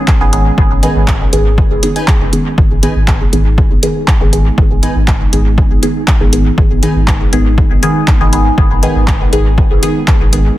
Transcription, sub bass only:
0.21 0.50 G#1 loud
0.58 0.88 G#1 medium
0.96 1.25 G#1 loud
1.33 1.63 G#1 loud
1.71 1.78 F#1 medium
2.21 2.28 F#1 loud
2.58 2.88 G#1 medium
2.96 3.25 G#1 loud
3.33 3.63 G#1 loud
3.71 3.78 G#1 medium
4.21 4.50 G#1 loud
4.58 4.88 G#1 loud
4.96 5.25 G#1 loud
5.33 5.63 G#1 loud
5.71 5.78 G#1 medium
6.21 6.50 G#1 loud
6.58 6.88 G#1 medium
6.96 7.25 G#1 loud
7.33 7.63 G#1 loud
7.71 7.78 G#1 loud
8.21 8.50 G#1 loud
8.58 8.88 G#1 medium
8.96 9.25 G#1 loud
9.33 9.63 G#1 loud
9.71 9.78 G#1 loud
10.21 10.50 G#1 medium

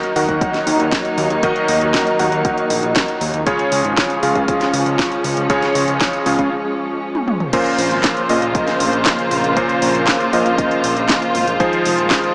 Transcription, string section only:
0.00 3.43 F#3 medium
0.00 3.43 A#3 medium
0.00 3.43 D#4 medium
3.47 7.49 F3 medium
3.47 7.49 G#3 medium
3.47 7.49 C#4 medium
7.53 11.56 C#3 medium
7.53 12.35 F3 medium
7.53 11.56 A#3 medium
7.53 12.35 F4 medium
7.53 12.35 C5 medium
11.60 12.35 D#3 medium
11.60 12.35 G#3 medium

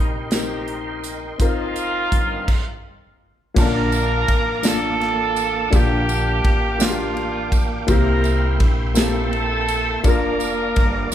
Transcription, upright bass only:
0.00 1.40 A#1 medium
1.40 2.08 F1 medium
2.12 2.45 G1 medium
3.56 4.24 A#1 loud
4.29 5.69 A1 medium
5.73 6.41 A#1 loud
6.45 7.85 A1 medium
7.88 8.56 C2 loud
8.60 10.04 A#1 medium
10.04 10.73 F1 loud
10.77 11.10 G1 medium

